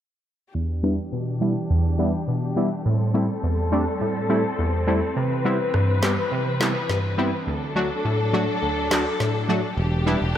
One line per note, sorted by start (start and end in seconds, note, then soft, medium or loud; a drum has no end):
0.55 0.98 E2 medium
0.55 2.83 E3 medium
0.55 2.83 D4 medium
0.55 2.83 G4 medium
0.83 0.96 G3 medium
0.83 0.96 B3 medium
0.83 0.96 D4 medium
0.83 0.96 E4 medium
1.12 1.56 B2 medium
1.41 1.53 G3 medium
1.41 1.53 B3 medium
1.41 1.53 D4 medium
1.41 1.54 E4 medium
1.70 2.14 E2 medium
1.99 2.11 G3 medium
1.99 2.11 B3 medium
1.99 2.11 D4 medium
1.99 2.11 E4 medium
2.28 2.71 B2 medium
2.56 2.69 G3 medium
2.56 2.69 B3 medium
2.56 2.69 D4 medium
2.56 2.69 E4 medium
2.85 3.29 A2 medium
2.85 5.14 G3 medium
2.85 7.43 C4 medium
2.85 5.14 A4 medium
3.14 3.26 G3 medium
3.14 3.26 A3 medium
3.14 3.27 C4 medium
3.14 3.27 E4 medium
3.43 3.87 E2 medium
3.72 3.84 G3 medium
3.72 3.84 A3 medium
3.72 3.84 C4 medium
3.72 3.84 D4 medium
4.01 4.44 A2 medium
4.29 4.42 G3 medium
4.29 4.42 A3 medium
4.29 4.42 C4 medium
4.29 4.42 E4 medium
4.59 5.02 E2 medium
4.87 4.99 G3 medium
4.87 5.00 A3 medium
4.87 5.00 C4 medium
4.87 5.00 E4 medium
5.16 5.60 C3 medium
5.16 7.45 E3 medium
5.16 7.45 B4 medium
5.45 5.57 G3 medium
5.45 5.57 B3 medium
5.45 5.57 C4 medium
5.45 5.57 E4 medium
5.74 6.18 G2 medium
5.74 cross-stick medium
6.02 6.15 G3 medium
6.02 6.15 B3 medium
6.02 6.15 C4 medium
6.02 6.15 G4 medium
6.02 snare loud
6.02 clap medium
6.32 6.75 C3 medium
6.60 6.73 G3 medium
6.60 6.73 B3 medium
6.60 6.73 C4 medium
6.60 6.73 E4 medium
6.60 snare loud
6.60 clap medium
6.89 7.33 G2 medium
6.89 snare medium
7.18 7.30 G3 medium
7.18 7.30 B3 medium
7.18 7.30 C4 medium
7.18 7.30 E4 medium
7.47 7.91 D2 medium
7.47 9.75 F#3 medium
7.47 9.75 D4 medium
7.47 9.75 A4 medium
7.75 7.88 F#3 medium
7.75 7.88 A3 medium
7.75 7.88 D4 medium
7.75 7.88 F#4 medium
8.05 8.48 A2 medium
8.33 8.46 F#3 medium
8.33 8.46 A3 medium
8.33 8.46 D4 medium
8.33 8.46 F#4 loud
8.62 9.06 D2 medium
8.91 9.03 F#3 medium
8.91 9.03 A3 medium
8.91 9.03 D4 medium
8.91 9.04 F#4 medium
8.91 snare loud
8.91 clap medium
9.20 9.64 A2 medium
9.20 snare medium
9.49 9.61 F#3 medium
9.49 9.61 A3 medium
9.49 9.61 D4 medium
9.49 9.61 F#4 medium
9.78 10.14 E1 loud
9.78 10.38 E3 medium
9.78 10.38 D4 medium
9.78 10.38 G4 medium
10.06 10.19 G3 medium
10.06 10.19 B3 medium
10.06 10.19 D4 medium
10.06 10.19 E4 medium
10.22 10.33 E1 medium